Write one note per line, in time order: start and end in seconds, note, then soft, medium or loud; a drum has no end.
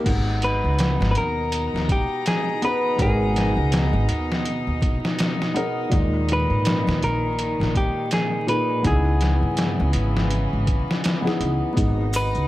0.04 0.60 G#1 loud
0.04 5.87 B2 medium
0.04 2.59 G#3 medium
0.04 2.57 B3 medium
0.04 2.58 D#4 medium
0.04 8.80 D#4 medium
0.04 5.87 A#5 medium
0.04 kick loud
0.04 closed hi-hat medium
0.04 crash medium
0.42 1.10 B4 loud
0.42 closed hi-hat medium
0.64 0.95 C#2 medium
0.79 snare loud
0.79 closed hi-hat medium
1.00 1.14 G#1 loud
1.00 snare medium
1.11 1.16 B4 medium
1.15 1.69 D#2 medium
1.15 1.92 A#4 loud
1.15 closed hi-hat medium
1.52 closed hi-hat medium
1.74 1.87 D#2 medium
1.74 snare soft
1.89 2.27 G4 medium
1.89 kick loud
1.89 closed hi-hat medium
2.26 2.64 G#4 medium
2.26 snare loud
2.26 closed hi-hat medium
2.62 2.95 B3 medium
2.62 2.95 D#4 medium
2.62 2.96 G#4 medium
2.62 2.96 B4 loud
2.62 3.01 B4 medium
2.62 closed hi-hat medium
2.96 3.52 G#1 loud
2.96 5.50 B3 medium
2.96 5.51 D#4 medium
2.96 5.51 G#4 medium
2.96 kick loud
2.96 closed hi-hat medium
3.01 4.06 G#4 medium
3.01 5.52 A#4 medium
3.36 snare soft
3.36 closed hi-hat medium
3.57 3.88 C#2 medium
3.72 snare loud
3.72 closed hi-hat medium
3.93 4.06 G#1 loud
4.09 4.62 D#2 medium
4.09 closed hi-hat medium
4.32 snare medium
4.45 closed hi-hat medium
4.67 4.80 D#2 medium
4.82 kick medium
4.82 closed hi-hat medium
5.05 snare medium
5.19 snare loud
5.19 closed hi-hat medium
5.42 snare soft
5.54 5.87 B3 medium
5.54 5.88 D#4 medium
5.54 5.88 G#4 medium
5.54 5.89 A#4 medium
5.54 closed hi-hat medium
5.89 6.45 D#2 loud
5.89 8.43 A#2 medium
5.89 8.82 A#2 medium
5.89 8.82 D#3 medium
5.89 8.44 G#3 medium
5.89 8.44 D#4 medium
5.89 kick loud
5.89 closed hi-hat medium
6.29 closed hi-hat medium
6.33 7.03 B4 loud
6.50 6.81 G#2 medium
6.65 snare loud
6.65 closed hi-hat medium
6.87 7.00 D#2 loud
6.87 snare medium
7.02 7.55 A#1 medium
7.02 7.77 A#4 loud
7.02 closed hi-hat medium
7.39 closed hi-hat medium
7.60 7.73 A#1 medium
7.60 snare soft
7.75 8.10 G4 medium
7.75 kick loud
7.75 closed hi-hat medium
8.11 8.49 G#4 loud
8.11 snare loud
8.11 closed hi-hat medium
8.47 8.80 A#2 medium
8.47 8.81 D#4 medium
8.47 8.81 G#4 medium
8.47 8.86 B4 medium
8.47 closed hi-hat medium
8.83 9.38 C#2 loud
8.83 11.74 C#3 medium
8.83 11.75 E3 medium
8.83 11.20 B3 medium
8.83 11.75 B3 medium
8.83 11.21 D#4 medium
8.83 11.21 E4 medium
8.83 9.91 G#4 medium
8.83 kick loud
8.83 closed hi-hat medium
8.87 11.22 G#4 medium
9.21 snare soft
9.21 closed hi-hat medium
9.42 9.73 G2 medium
9.57 snare loud
9.57 closed hi-hat medium
9.80 9.92 C#2 loud
9.93 10.48 G#1 medium
9.93 closed hi-hat medium
10.17 snare medium
10.30 closed hi-hat medium
10.53 10.66 G#1 medium
10.67 kick medium
10.67 closed hi-hat medium
10.91 snare medium
11.04 snare loud
11.04 closed hi-hat medium
11.22 11.72 B3 medium
11.22 11.72 D#4 medium
11.22 11.73 E4 medium
11.22 11.73 G#4 medium
11.27 snare soft
11.40 11.59 C#2 medium
11.40 closed hi-hat medium
11.73 12.31 G#1 medium
11.73 12.48 B2 medium
11.73 12.48 B3 medium
11.73 12.48 D#4 medium
11.73 12.48 G#4 medium
11.73 12.48 A#5 medium
11.73 kick loud
11.73 closed hi-hat medium
11.78 maracas medium
12.13 12.48 B4 medium
12.13 closed hi-hat medium
12.13 triangle medium
12.13 maracas loud
12.35 12.48 C#2 medium
12.35 maracas soft